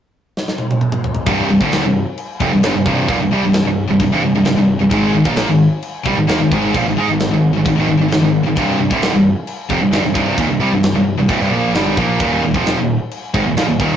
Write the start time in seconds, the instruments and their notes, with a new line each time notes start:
0.37 snare
0.48 snare
0.58 high tom
0.71 high tom
0.81 mid tom
0.92 mid tom
1.04 floor tom
1.15 floor tom
1.26 picked electric bass C1, distorted electric guitar C2 G2 C3, kick, crash
1.49 picked electric bass C1, distorted electric guitar C2 G2
1.60 picked electric bass D1, distorted electric guitar D2 A2 D3, kick
1.72 snare, crash
1.83 picked electric bass C1, distorted electric guitar C2 G2
2.18 crash
2.40 picked electric bass F1, distorted electric guitar F2 C3, kick
2.52 picked electric bass C1, distorted electric guitar C2 G2
2.63 picked electric bass G1, distorted electric guitar G2 D3, snare, crash
2.74 picked electric bass C1, distorted electric guitar C2 G2
2.86 picked electric bass C1, distorted electric guitar C2 G2 C3, kick
3.08 picked electric bass D#1, distorted electric guitar D#2 A#2, kick, crash
3.19 picked electric bass C1, distorted electric guitar C2 G2
3.31 picked electric bass C2, distorted electric guitar C3 G3
3.42 picked electric bass C1, distorted electric guitar C2 G2
3.53 snare, crash
3.65 picked electric bass C1, distorted electric guitar C2 G2
3.88 picked electric bass C1, distorted electric guitar C2 G2
3.99 picked electric bass C1, distorted electric guitar C2 G2, kick, crash
4.11 picked electric bass C1, distorted electric guitar C2 G2
4.22 picked electric bass C1, distorted electric guitar C2 G2
4.33 picked electric bass C1, distorted electric guitar C2 G2
4.45 picked electric bass C1, distorted electric guitar C2 G2, snare, crash
4.56 picked electric bass C1, distorted electric guitar C2 G2
4.79 picked electric bass C1, distorted electric guitar C2 G2
4.90 picked electric bass G#1, distorted electric guitar G#2 D#3 G#3, kick, crash
5.13 picked electric bass G#1, distorted electric guitar G#2 D#3
5.24 picked electric bass A#1, distorted electric guitar A#2 F3 A#3, kick
5.36 snare, crash
5.46 picked electric bass G#1, distorted electric guitar G#2 D#3
5.82 crash
6.04 picked electric bass C2, distorted electric guitar C3 G3, kick
6.16 picked electric bass G#1, distorted electric guitar G#2 D#3
6.27 picked electric bass D#2, distorted electric guitar D#3 A#3, snare, crash
6.39 picked electric bass G#1, distorted electric guitar G#2 D#3
6.51 picked electric bass G#1, distorted electric guitar G#2 D#3 G#3, kick
6.74 picked electric bass A#1, distorted electric guitar A#2 F3, kick, crash
6.86 picked electric bass G#1, distorted electric guitar G#2 D#3
6.96 picked electric bass G#2, distorted electric guitar G#3 D#4
7.08 picked electric bass G#1, distorted electric guitar G#2 D#3
7.12 distorted electric guitar G#2 D#3
7.20 snare, crash
7.30 picked electric bass G#1, distorted electric guitar G#2 D#3
7.53 picked electric bass G#1, distorted electric guitar G#2 D#3
7.58 distorted electric guitar D#3
7.65 picked electric bass G#1, distorted electric guitar G#2 D#3, kick, crash
7.76 picked electric bass G#1, distorted electric guitar G#2 D#3
7.80 distorted electric guitar G#2
7.86 picked electric bass G#1, distorted electric guitar G#2 D#3
7.91 distorted electric guitar D#3
7.97 picked electric bass G#1, distorted electric guitar G#2 D#3
8.09 picked electric bass G#1, distorted electric guitar G#2 D#3, snare, crash
8.13 distorted electric guitar G#2 D#3
8.20 picked electric bass G#1, distorted electric guitar G#2 D#3
8.24 distorted electric guitar G#2 D#3
8.43 picked electric bass G#1, distorted electric guitar G#2 D#3
8.56 picked electric bass C1, distorted electric guitar C2 G2 C3, kick, crash
8.78 picked electric bass C1, distorted electric guitar C2 G2
8.90 picked electric bass D1, distorted electric guitar D2 A2 D3, kick
9.02 snare, crash
9.12 picked electric bass C1, distorted electric guitar C2 G2
9.47 crash
9.69 picked electric bass F1, distorted electric guitar F2 C3, kick
9.81 picked electric bass C1, distorted electric guitar C2 G2
9.92 picked electric bass G1, distorted electric guitar G2 D3, snare, crash
10.04 picked electric bass C1, distorted electric guitar C2 G2
10.14 picked electric bass C1, distorted electric guitar C2 G2 C3, kick
10.36 picked electric bass D#1, distorted electric guitar D#2 A#2, kick, crash
10.49 picked electric bass C1, distorted electric guitar C2 G2
10.60 picked electric bass C2, distorted electric guitar C3 G3
10.72 picked electric bass C1, distorted electric guitar C2 G2
10.83 snare, crash
10.94 picked electric bass C1, distorted electric guitar C2 G2
11.17 picked electric bass C1, distorted electric guitar C2 G2
11.28 picked electric bass D1, distorted electric guitar D2 A2, kick, crash
11.39 picked electric bass C1, distorted electric guitar C2 G2
11.51 picked electric bass A#1, distorted electric guitar A#2 F3 A#3
11.73 picked electric bass G1, distorted electric guitar G2 D3 G3, snare, crash
11.97 picked electric bass A#1, distorted electric guitar A#2 F3 A#3, kick
12.20 picked electric bass D#1, distorted electric guitar D#2 A#2 D#3, kick, crash
12.42 picked electric bass D#1, distorted electric guitar D#2 A#2
12.54 picked electric bass F1, distorted electric guitar F2 C3 F3, kick
12.66 snare, crash
12.77 picked electric bass D#1, distorted electric guitar D#2 A#2
13.11 crash
13.34 picked electric bass G#1, distorted electric guitar G#2 D#3, kick
13.45 picked electric bass D#1, distorted electric guitar D#2 A#2
13.57 picked electric bass A#1, distorted electric guitar A#2 F3, snare, crash
13.68 picked electric bass D#1, distorted electric guitar D#2 A#2
13.80 picked electric bass D#1, distorted electric guitar D#2 A#2 D#3, kick